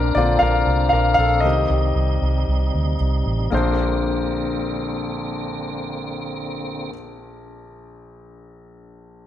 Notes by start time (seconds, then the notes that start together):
Already playing: A#1 A#3 C4 D4 A#4
0.15 A#1 D3 A#3 C4 F4 D5
0.39 A#1 A#4 F5
0.67 C2
0.89 A#1 A#4 F5
1.14 F5
1.18 A#1 A4
1.40 C2 D#3 G3 D#5
1.45 C3 G3 C4 D#4 G4
1.70 C2
1.96 C2
2.22 C2
2.48 C2
2.74 D2
3.00 C2
3.26 A1
3.50 A#1 D3 A#3 C4 D4
3.54 C5